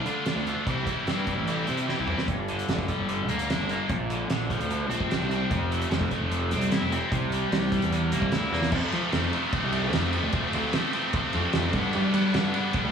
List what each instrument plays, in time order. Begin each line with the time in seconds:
Already playing: distorted electric guitar D3
0.06 picked electric bass D3, distorted electric guitar A3 D4 F4, closed hi-hat
0.26 distorted electric guitar D3 A3 D4 F4, snare, closed hi-hat
0.36 picked electric bass D2
0.46 distorted electric guitar A3 D4 F4, closed hi-hat
0.67 picked electric bass C2, distorted electric guitar C3 E3 G3 C4 E4, kick, closed hi-hat
0.87 distorted electric guitar G3 C4 E4, kick, closed hi-hat
1.06 picked electric bass G2, distorted electric guitar E3 G3 C4 E4, snare, closed hi-hat
1.27 kick, closed hi-hat
1.38 picked electric bass A1
1.47 distorted electric guitar C3 E3 G3 C4 E4, closed hi-hat
1.67 picked electric bass C3, distorted electric guitar G3 C4 E4, closed hi-hat
1.77 closed hi-hat
1.87 distorted electric guitar E3 G3 C4 E4, snare
1.99 picked electric bass C2
2.07 distorted electric guitar G3 C4 E4, mid tom
2.18 snare
2.28 picked electric bass G1, distorted electric guitar G2, kick, closed hi-hat
2.48 distorted electric guitar D3, closed hi-hat
2.59 closed hi-hat
2.68 picked electric bass G1, distorted electric guitar D3, snare, closed hi-hat
2.79 kick
2.88 distorted electric guitar G3, kick, closed hi-hat
2.99 picked electric bass G1
3.09 distorted electric guitar D3, closed hi-hat
3.28 picked electric bass D2, distorted electric guitar A#3, closed hi-hat
3.39 closed hi-hat
3.50 distorted electric guitar D4, snare, closed hi-hat
3.60 picked electric bass G1
3.69 distorted electric guitar A#3, closed hi-hat
3.89 picked electric bass A#1, distorted electric guitar A#2, kick, closed hi-hat
4.10 distorted electric guitar D3, closed hi-hat
4.30 picked electric bass A#1, distorted electric guitar D3, snare, closed hi-hat
4.50 distorted electric guitar F3, kick, closed hi-hat
4.60 picked electric bass D2, closed hi-hat
4.70 distorted electric guitar D3, closed hi-hat
4.89 picked electric bass A#1, distorted electric guitar C4, closed hi-hat
5.00 kick
5.10 distorted electric guitar D4, snare, closed hi-hat
5.21 picked electric bass C2
5.30 distorted electric guitar C4, closed hi-hat
5.51 picked electric bass F1, distorted electric guitar F3, kick, closed hi-hat
5.71 distorted electric guitar A3, closed hi-hat
5.82 closed hi-hat
5.90 picked electric bass F1, distorted electric guitar F3, snare, closed hi-hat
6.01 kick
6.11 distorted electric guitar A3, kick, closed hi-hat
6.21 picked electric bass F1
6.31 distorted electric guitar F3, closed hi-hat
6.51 picked electric bass C2, distorted electric guitar C4, closed hi-hat
6.61 closed hi-hat
6.72 distorted electric guitar E4, snare, closed hi-hat
6.82 picked electric bass F1
6.92 distorted electric guitar C4, closed hi-hat
7.12 picked electric bass C2, distorted electric guitar C3, kick, closed hi-hat
7.32 distorted electric guitar G3, closed hi-hat
7.52 picked electric bass C2, distorted electric guitar C3, snare, closed hi-hat
7.72 distorted electric guitar G3, kick, closed hi-hat
7.82 picked electric bass E2, closed hi-hat
7.92 distorted electric guitar C3, closed hi-hat
8.12 picked electric bass C2, distorted electric guitar A#3, closed hi-hat
8.22 kick
8.32 picked electric bass D2, distorted electric guitar E4, snare, closed hi-hat
8.52 picked electric bass E2, distorted electric guitar A#3, snare
8.62 snare
8.72 distorted electric guitar F2 C3 F3 A3 C4, picked electric bass F2, kick, crash
8.92 distorted electric guitar F2 C3 F3 A3 C4, picked electric bass F3, ride
9.12 picked electric bass F2, distorted electric guitar F2 C3 F3 A3 C4, snare, ride
9.33 distorted electric guitar F2 C3 F3 A3 C4, ride
9.53 distorted electric guitar F2 C3 F3 A3 C4, kick, ride
9.63 picked electric bass C2
9.72 distorted electric guitar F2 C3 F3 A3 C4, ride
9.93 picked electric bass F2, distorted electric guitar F2 C3 F3 A3 C4, snare, ride
10.13 distorted electric guitar F2 C3 F3 A3 C4, ride
10.23 picked electric bass D2
10.32 distorted electric guitar F2 C3 F3 A3 C4, kick, ride
10.53 picked electric bass D2, distorted electric guitar F2 C3 F3 A3 C4, ride
10.73 distorted electric guitar F2 C3 F3 A3 C4, snare, ride
10.93 distorted electric guitar F2 C3 F3 A3 C4, ride
11.13 distorted electric guitar F2 C3 F3 A3 C4, kick, ride
11.33 distorted electric guitar F2 C3 F3 A3 C4, picked electric bass F2, ride
11.53 picked electric bass F2, distorted electric guitar F2 C3 F3 A3 C4, snare, ride
11.73 picked electric bass G2, distorted electric guitar G2 D3 G3 B3 D4, kick, ride
11.93 distorted electric guitar G2 D3 G3 B3 D4, picked electric bass G2, ride
12.14 distorted electric guitar G2 D3 G3 B3 D4, picked electric bass G3, ride
12.34 picked electric bass G2, distorted electric guitar G2 D3 G3 B3 D4, snare, ride
12.54 distorted electric guitar G2 D3 G3 B3 D4, ride
12.73 distorted electric guitar G2 D3 G3 B3 D4, kick, ride
12.85 picked electric bass D2